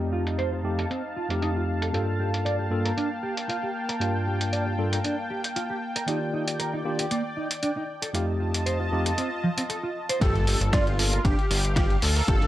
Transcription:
Already playing: tine electric piano F2 A3 C4 D#4 G4, analog synth pad D#4 F5 A5
0.13 clean electric guitar F4
0.27 closed hi-hat
0.38 clean electric guitar C5, closed hi-hat
0.52 clean electric guitar F4
0.64 tine electric piano F2 A3 C4 D#4 G4
0.79 clean electric guitar A4, closed hi-hat
0.90 clean electric guitar C4, closed hi-hat
1.16 clean electric guitar F4
1.29 tine electric piano F2 A3 C4 D#4 G4, closed hi-hat
1.42 clean electric guitar D#4, closed hi-hat
1.56 clean electric guitar F4
1.82 clean electric guitar A4, closed hi-hat
1.92 tine electric piano G2 A#3 D4 F4 A4, analog synth pad A#3 G5, clean electric guitar G4, closed hi-hat
2.20 clean electric guitar G4
2.34 closed hi-hat
2.45 clean electric guitar D5, closed hi-hat
2.59 clean electric guitar G4
2.70 tine electric piano G2 A#3 D4 F4 A4
2.85 clean electric guitar A#4, closed hi-hat
2.97 clean electric guitar D4, closed hi-hat
3.23 clean electric guitar G4
3.37 closed hi-hat
3.49 clean electric guitar F4, closed hi-hat
3.63 clean electric guitar G4
3.89 clean electric guitar A#4, closed hi-hat
4.00 tine electric piano G2 A#3 D4 F4 A5, clean electric guitar G4, closed hi-hat
4.27 clean electric guitar G4
4.41 closed hi-hat
4.53 clean electric guitar D5, closed hi-hat
4.66 clean electric guitar G4
4.78 tine electric piano G2 A#3 D4 F4 A4
4.92 clean electric guitar A#4, closed hi-hat
5.04 clean electric guitar D4, closed hi-hat
5.30 clean electric guitar G4
5.44 closed hi-hat
5.56 clean electric guitar F4, closed hi-hat
5.70 clean electric guitar G4
5.96 clean electric guitar A#4, closed hi-hat
6.06 tine electric piano D#3 A#3 F4 G4 D5, analog synth pad D#3 D5, clean electric guitar D#4, closed hi-hat
6.33 clean electric guitar D#4
6.48 closed hi-hat
6.59 clean electric guitar A#4, closed hi-hat
6.73 clean electric guitar D#4
6.85 tine electric piano D#3 A#3 D4 F4 G4
6.99 clean electric guitar G4, closed hi-hat
7.11 clean electric guitar A#3, closed hi-hat
7.37 clean electric guitar D#4
7.51 closed hi-hat
7.63 clean electric guitar D4, closed hi-hat
7.77 clean electric guitar D#4
7.89 analog synth pad F4 D#5 A5
8.02 clean electric guitar A4, closed hi-hat
8.13 tine electric piano F2 A3 C4 D#4 G4, clean electric guitar F4, closed hi-hat
8.40 clean electric guitar F4
8.54 closed hi-hat
8.66 clean electric guitar C5, closed hi-hat
8.80 clean electric guitar F4
8.91 tine electric piano F2 A3 C4 D#4 G4
9.06 clean electric guitar A4, closed hi-hat
9.18 clean electric guitar C4, closed hi-hat
9.43 clean electric guitar F3
9.58 clean electric guitar C4, closed hi-hat
9.70 clean electric guitar A4, closed hi-hat
9.83 clean electric guitar F4
10.09 clean electric guitar C5, closed hi-hat
10.20 analog synth bass G1, tine electric piano A#3 D4 F4 A4, clean electric guitar G4, analog synth lead A4, analog synth pad F5, kick, closed hi-hat, ride, impact
10.35 closed hi-hat
10.47 clean electric guitar G4, open hi-hat
10.61 analog synth bass G1, closed hi-hat
10.73 analog synth lead F4, clean electric guitar D5, kick, snare, closed hi-hat, ride
10.87 clean electric guitar G4, closed hi-hat
10.98 tine electric piano A#3 D4 F4 A4, open hi-hat
11.13 clean electric guitar A#4, closed hi-hat
11.25 analog synth bass G1, clean electric guitar D4, analog synth lead G4, kick, closed hi-hat, ride
11.39 closed hi-hat
11.51 analog synth bass G1, clean electric guitar G4, analog synth lead G4, open hi-hat
11.65 closed hi-hat
11.76 clean electric guitar F4, kick, snare, closed hi-hat, ride
11.90 clean electric guitar G4, closed hi-hat
12.02 analog synth bass D2, analog synth lead A4, open hi-hat
12.16 clean electric guitar A#4, open hi-hat
12.27 analog synth bass G1, tine electric piano A#3 D4 F4 A5, clean electric guitar G4, kick, closed hi-hat, ride
12.42 snare, closed hi-hat

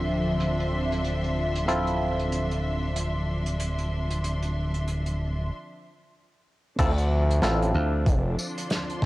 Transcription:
Already playing: analog synth bass D1, analog synth pad D3 F3 C4 E5, string section F3 D4 E5 C6, clav C4 E4 F4 A4
0.40 closed hi-hat
0.60 closed hi-hat
0.92 closed hi-hat
1.04 closed hi-hat
1.24 closed hi-hat
1.56 closed hi-hat
1.68 clav C4 E4 F4 A4, closed hi-hat
1.87 closed hi-hat
2.19 closed hi-hat
2.32 closed hi-hat
2.51 closed hi-hat
2.96 closed hi-hat
3.46 closed hi-hat
3.60 closed hi-hat
3.78 closed hi-hat
4.10 closed hi-hat
4.24 closed hi-hat
4.43 closed hi-hat
4.74 closed hi-hat
4.88 closed hi-hat
5.06 closed hi-hat
6.79 analog synth bass D2, analog synth pad D3 F3 C4 D5, clav C4 E4 F4 A4, string section D4, kick, closed hi-hat, crash
6.98 string section F3, closed hi-hat
7.30 closed hi-hat
7.42 analog synth bass A1, clav C4 E4 F4 A4, snare, closed hi-hat
7.62 closed hi-hat
7.74 slap bass D2
8.06 analog synth bass F1, kick, closed hi-hat
8.39 tambourine
8.48 string section C6
8.58 closed hi-hat
8.70 snare, closed hi-hat
8.89 closed hi-hat
9.02 analog synth bass A1, kick

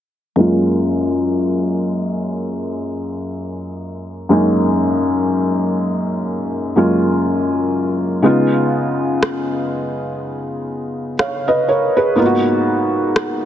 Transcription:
0.36 felt piano F#2 G#3 A#3 C#4 F4
4.29 felt piano F#2 G#3 A#3 C#4 D#4
6.76 felt piano F#2 G#3 A#3 C#4 F4
8.22 felt piano C#3 G#3 B3 D#4 F4
9.23 cross-stick
11.19 felt piano C#5 F5, cross-stick
11.48 felt piano B4 D#5
11.68 felt piano A#4 C#5
11.97 felt piano G#4 B4
12.15 felt piano G#2 A#3 B3 D#4 F4
12.26 felt piano F#4
13.16 cross-stick

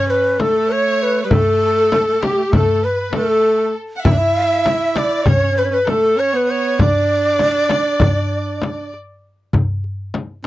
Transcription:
Already playing: alto saxophone C#4, ney C#5
0.08 violin section B4, ney B4
0.31 violin section B4
0.38 alto saxophone A3, violin section A4, ney A4, darbuka tek, frame drum
0.69 violin section C#5, ney C#5, darbuka ka
1.02 ney B4
1.23 alto saxophone G3, ney B4, violin section B4
1.30 alto saxophone A3, violin section A4, ney A4, darbuka dum, frame drum
1.92 alto saxophone A3, darbuka tek, frame drum
2.01 alto saxophone A3
2.08 alto saxophone A3
2.14 alto saxophone A3
2.20 alto saxophone A3, violin section G4, ney G4, darbuka tek, frame drum
2.28 alto saxophone A3
2.36 alto saxophone A3
2.51 alto saxophone A3, violin section A4, darbuka dum, frame drum
2.55 ney A4
2.83 violin section B4, ney B4
3.13 alto saxophone A3, violin section A4, ney A4, darbuka tek, frame drum
3.96 violin section F#5
4.04 alto saxophone E4, violin section E5, ney E5, frame drum, darbuka dum
4.12 alto saxophone D4
4.18 alto saxophone E4
4.66 darbuka tek, frame drum
4.96 violin section D5, ney D5, darbuka tek, frame drum
5.25 alto saxophone C#4, violin section C#5, ney C#5, frame drum, darbuka dum
5.34 alto saxophone C#4
5.42 alto saxophone C#4
5.51 alto saxophone C#4
5.57 alto saxophone C#4, violin section B4, ney B4
5.65 alto saxophone C#4, ney C#5
5.71 alto saxophone C#4, violin section B4, ney B4
5.87 alto saxophone A3, violin section A4, ney A4, darbuka tek, frame drum
6.17 alto saxophone C#4, violin section C#5, ney C#5, darbuka ka
6.33 alto saxophone B3, ney B4
6.48 violin section C#5, ney C#5
6.79 alto saxophone D4, violin section D5, ney D5, darbuka dum, frame drum
7.39 darbuka tek, frame drum
7.55 darbuka ka
7.69 darbuka tek, frame drum
8.00 frame drum, darbuka dum
8.32 darbuka ka
8.62 darbuka tek, frame drum
8.93 darbuka ka
9.53 frame drum, darbuka dum
9.84 darbuka ka
10.14 darbuka tek, frame drum

